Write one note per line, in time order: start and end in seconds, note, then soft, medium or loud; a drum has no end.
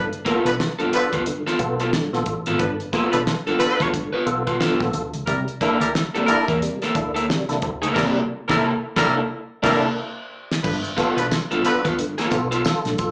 0.00 0.11 G1 loud
0.13 closed hi-hat soft
0.25 0.48 B3 medium
0.25 0.43 B3 medium
0.25 0.49 F4 medium
0.25 0.43 F4 medium
0.25 0.43 A4 medium
0.25 0.49 B4 medium
0.25 kick medium
0.25 closed hi-hat medium
0.45 0.57 B1 medium
0.45 0.55 F3 medium
0.45 0.54 D4 medium
0.45 0.52 F4 soft
0.45 0.52 A4 soft
0.45 0.55 B4 medium
0.45 closed hi-hat medium
0.60 0.68 F4 soft
0.60 0.68 A4 soft
0.60 snare loud
0.79 0.90 G2 medium
0.79 0.90 D3 medium
0.79 0.92 B3 medium
0.79 0.92 F4 medium
0.79 0.91 A4 medium
0.79 closed hi-hat soft
0.92 1.15 F3 medium
0.92 1.09 B3 medium
0.92 1.15 D4 medium
0.92 1.09 F4 medium
0.92 1.09 A4 medium
0.92 1.15 B4 loud
0.92 muted fingered electric bass stroke soft
0.92 closed hi-hat medium
1.12 1.25 D2 medium
1.12 1.23 B3 medium
1.12 1.23 F4 medium
1.12 1.23 B4 medium
1.12 kick medium
1.12 closed hi-hat soft
1.26 1.43 G2 medium
1.26 1.43 D3 medium
1.26 closed hi-hat medium
1.47 1.59 B3 medium
1.47 1.59 F4 medium
1.47 1.59 A4 medium
1.47 snare soft
1.59 1.89 B1 medium
1.59 1.76 B3 medium
1.59 1.76 F4 medium
1.59 1.76 A4 medium
1.59 kick medium
1.59 closed hi-hat medium
1.80 1.90 B3 medium
1.80 1.85 F4 soft
1.80 1.90 F4 medium
1.80 1.90 A4 medium
1.80 1.85 A4 soft
1.80 closed hi-hat soft
1.93 2.09 G2 medium
1.93 2.10 D3 medium
1.93 snare loud
2.13 2.25 A#1 medium
2.13 2.24 B3 medium
2.13 2.24 F4 medium
2.13 2.24 A4 medium
2.13 snare soft
2.26 2.45 A1 medium
2.26 2.35 F4 soft
2.26 2.35 A4 soft
2.26 kick medium
2.26 closed hi-hat medium
2.46 2.59 G#1 medium
2.46 2.60 B3 medium
2.46 2.59 F4 medium
2.46 2.59 A4 medium
2.46 closed hi-hat soft
2.58 2.78 G1 loud
2.58 2.76 G2 medium
2.58 2.76 D3 medium
2.58 2.72 F3 medium
2.58 2.72 D4 medium
2.58 2.72 B4 medium
2.58 kick loud
2.58 closed hi-hat medium
2.80 closed hi-hat soft
2.93 3.09 B3 medium
2.93 3.16 B3 medium
2.93 3.10 F4 medium
2.93 3.17 F4 medium
2.93 3.10 A4 loud
2.93 3.17 A4 medium
2.93 kick medium
2.93 closed hi-hat medium
3.11 3.26 B1 medium
3.11 3.21 F3 medium
3.11 3.21 D4 medium
3.11 3.19 F4 soft
3.11 3.19 A4 soft
3.11 3.21 B4 medium
3.11 closed hi-hat medium
3.27 3.35 F4 soft
3.27 3.35 A4 soft
3.27 snare loud
3.47 3.58 G2 medium
3.47 3.58 D3 medium
3.47 3.60 B3 medium
3.47 3.60 F4 medium
3.47 3.59 A4 medium
3.47 closed hi-hat soft
3.59 3.88 F3 loud
3.59 3.76 B3 medium
3.59 3.88 D4 loud
3.59 3.76 F4 medium
3.59 3.76 A4 medium
3.59 3.88 B4 loud
3.59 muted fingered electric bass stroke soft
3.59 closed hi-hat medium
3.80 3.92 D2 medium
3.80 3.91 B3 medium
3.80 3.90 F4 medium
3.80 3.90 A4 medium
3.80 kick medium
3.80 closed hi-hat medium
3.93 4.10 G2 medium
3.93 4.10 D3 medium
3.93 kick loud
3.93 closed hi-hat loud
4.13 4.26 B3 medium
4.13 4.26 F4 medium
4.13 4.26 B4 medium
4.26 4.57 B1 medium
4.26 4.43 B3 medium
4.26 4.43 F4 medium
4.26 4.43 A4 medium
4.26 closed hi-hat medium
4.47 4.58 B3 medium
4.47 4.53 F4 soft
4.47 4.57 F4 medium
4.47 4.53 A4 soft
4.47 4.57 B4 medium
4.47 kick medium
4.47 closed hi-hat soft
4.60 4.77 G2 medium
4.60 4.77 D3 medium
4.60 4.79 B3 medium
4.60 4.79 F4 medium
4.60 4.80 A4 medium
4.60 snare loud
4.80 4.93 A#1 medium
4.80 4.92 B3 medium
4.80 4.92 F4 medium
4.80 4.92 A4 medium
4.80 kick loud
4.80 snare soft
4.93 5.12 D2 medium
4.93 5.03 F4 soft
4.93 5.03 A4 soft
4.93 closed hi-hat medium
5.14 5.26 C#2 medium
5.14 closed hi-hat soft
5.26 5.46 C2 loud
5.26 5.44 C3 medium
5.26 5.40 G3 medium
5.26 5.44 G3 medium
5.26 5.39 E4 medium
5.26 5.39 A#4 medium
5.26 kick medium
5.26 closed hi-hat medium
5.48 closed hi-hat soft
5.61 5.80 A#3 medium
5.61 5.78 A#3 loud
5.61 5.78 D4 medium
5.61 5.80 E4 medium
5.61 5.78 E4 medium
5.61 5.78 A4 loud
5.61 5.80 A#4 medium
5.61 kick medium
5.61 closed hi-hat medium
5.80 5.93 D2 medium
5.80 5.89 G3 medium
5.80 5.89 E4 medium
5.80 5.87 E4 soft
5.80 5.87 A4 soft
5.80 5.90 A#4 medium
5.80 closed hi-hat medium
5.95 6.03 E4 soft
5.95 6.03 A4 soft
5.95 snare loud
6.15 6.26 C3 medium
6.15 6.26 G3 medium
6.15 6.28 A#3 medium
6.15 6.28 E4 medium
6.15 6.27 A4 medium
6.15 closed hi-hat soft
6.26 6.49 G3 loud
6.26 6.45 A#3 medium
6.26 6.45 D4 medium
6.26 6.49 E4 loud
6.26 6.45 E4 medium
6.26 6.45 A4 medium
6.26 6.48 A#4 loud
6.26 muted fingered electric bass stroke soft
6.26 closed hi-hat medium
6.48 6.61 E2 medium
6.48 6.59 A#3 medium
6.48 6.58 E4 medium
6.48 6.58 A#4 medium
6.48 kick medium
6.48 closed hi-hat medium
6.62 6.78 C3 medium
6.62 6.78 G3 medium
6.62 closed hi-hat medium
6.82 6.95 A#3 medium
6.82 6.95 E4 medium
6.82 6.95 A4 medium
6.82 snare soft
6.82 closed hi-hat soft
6.95 7.25 D2 medium
6.95 7.12 A#3 medium
6.95 7.12 D4 medium
6.95 7.12 E4 medium
6.95 7.12 A4 medium
6.95 kick medium
6.95 closed hi-hat medium
7.14 7.25 A#3 medium
7.14 7.25 E4 medium
7.14 7.21 E4 soft
7.14 7.25 A4 medium
7.14 7.21 A4 soft
7.14 closed hi-hat medium
7.29 7.46 C3 medium
7.29 7.46 G3 medium
7.29 snare loud
7.49 7.62 C2 medium
7.49 7.60 A#3 medium
7.49 7.60 D4 medium
7.49 7.60 E4 medium
7.49 7.60 A4 medium
7.49 snare soft
7.49 closed hi-hat soft
7.62 7.81 D2 loud
7.62 7.71 E4 soft
7.62 7.71 A4 soft
7.62 kick medium
7.62 closed hi-hat medium
7.81 7.94 C#2 medium
7.81 7.95 A#3 medium
7.81 7.94 E4 medium
7.81 7.93 A4 medium
7.81 closed hi-hat medium
7.94 8.20 C2 loud
7.94 8.20 C3 loud
7.94 8.12 G3 medium
7.94 8.20 G3 loud
7.94 8.20 A#3 loud
7.94 8.13 E4 loud
7.94 8.20 E4 medium
7.94 8.19 A4 medium
7.94 8.13 A#4 medium
7.94 kick loud
7.94 snare loud
7.94 crash medium
8.48 8.71 C2 loud
8.48 8.65 G3 loud
8.48 8.71 A#3 loud
8.48 8.65 E4 loud
8.48 8.71 E4 loud
8.48 8.71 E4 medium
8.48 8.71 A4 loud
8.48 8.72 A4 loud
8.48 8.65 A#4 loud
8.48 kick loud
8.48 snare loud
8.96 9.20 C2 medium
8.96 9.15 G3 loud
8.96 9.20 A#3 medium
8.96 9.21 A#3 medium
8.96 9.20 D4 medium
8.96 9.20 E4 medium
8.96 9.21 E4 loud
8.96 9.15 E4 medium
8.96 9.20 A4 medium
8.96 9.21 A4 medium
8.96 9.15 A#4 loud
8.96 kick loud
8.96 snare loud
9.62 9.88 C2 loud
9.62 9.82 G3 loud
9.62 9.87 A#3 loud
9.62 9.88 A#3 loud
9.62 9.87 D4 loud
9.62 9.87 E4 loud
9.62 9.81 E4 loud
9.62 9.87 A4 loud
9.62 9.87 A#4 loud
9.62 9.81 A#4 loud
9.62 kick loud
9.62 snare loud
9.62 crash medium
10.52 snare loud
10.63 10.82 G1 loud
10.63 10.81 G2 medium
10.63 10.81 D3 medium
10.63 10.77 F3 medium
10.63 10.77 D4 medium
10.63 10.77 B4 medium
10.63 kick loud
10.63 crash medium
10.63 tambourine medium
10.84 closed hi-hat soft
10.97 11.16 B3 medium
10.97 11.14 B3 medium
10.97 11.16 F4 medium
10.97 11.14 F4 medium
10.97 11.14 A4 loud
10.97 11.16 B4 medium
10.97 kick medium
10.97 closed hi-hat medium
10.97 tambourine soft
11.17 11.29 B1 medium
11.17 11.26 F3 medium
11.17 11.26 D4 medium
11.17 11.23 F4 soft
11.17 11.23 A4 soft
11.17 11.26 B4 medium
11.17 closed hi-hat medium
11.17 tambourine soft
11.31 11.39 F4 soft
11.31 11.39 A4 soft
11.31 snare loud
11.31 tambourine medium
11.51 11.62 G2 medium
11.51 11.63 D3 medium
11.51 11.64 B3 medium
11.51 11.64 F4 medium
11.51 11.64 A4 medium
11.51 closed hi-hat soft
11.63 11.86 F3 medium
11.63 11.81 B3 medium
11.63 11.87 D4 medium
11.63 11.82 F4 medium
11.63 11.82 A4 medium
11.63 11.87 B4 loud
11.63 muted fingered electric bass stroke soft
11.63 closed hi-hat medium
11.63 tambourine medium
11.85 11.97 D2 medium
11.85 11.95 B3 medium
11.85 11.95 F4 medium
11.85 11.95 B4 medium
11.85 kick medium
11.85 closed hi-hat medium
11.85 tambourine soft
11.99 12.15 G2 medium
11.99 12.15 D3 medium
11.99 closed hi-hat medium
12.18 12.37 B3 medium
12.18 12.36 F4 medium
12.18 12.36 A4 medium
12.18 snare soft
12.18 closed hi-hat soft
12.18 tambourine medium
12.31 12.62 B1 medium
12.31 12.48 B3 medium
12.31 12.48 F4 medium
12.31 12.48 A4 medium
12.31 kick loud
12.31 closed hi-hat medium
12.31 tambourine medium
12.51 12.62 B3 medium
12.51 12.62 F4 medium
12.51 12.57 F4 soft
12.51 12.61 A4 medium
12.51 12.58 A4 soft
12.51 closed hi-hat medium
12.51 tambourine soft
12.65 12.82 F4 medium
12.65 12.82 A4 medium
12.65 snare loud
12.65 tambourine loud
12.85 12.98 A#1 medium
12.85 12.97 G2 medium
12.85 12.96 D3 medium
12.85 snare soft
12.85 closed hi-hat soft
12.98 13.11 A1 medium
12.98 13.11 F4 medium
12.98 13.11 A4 medium
12.98 kick loud
12.98 closed hi-hat medium
12.98 tambourine medium